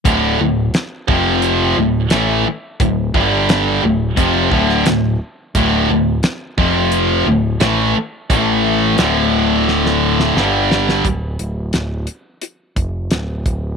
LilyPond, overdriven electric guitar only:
\new Staff \with { instrumentName = "Overdriven electric guitar" } { \clef bass \time 4/4 \key g \lydian \tempo 4 = 87 <d, a, d>8 <d, a,>8 r8 <f, c f>4 <d, a,>8 <a, e a>8 r8 | <d, a,>8 <g, d g>4 <d, a,>8 <f, c f>8 <d, a, d>8 <d, a,>8 r8 | <d, a, d>8 <d, a,>8 r8 <f, c f>4 <d, a,>8 <a, e a>8 r8 | <a, e a>4 <d, a, d>2 <g, d g>4 |
r1 | }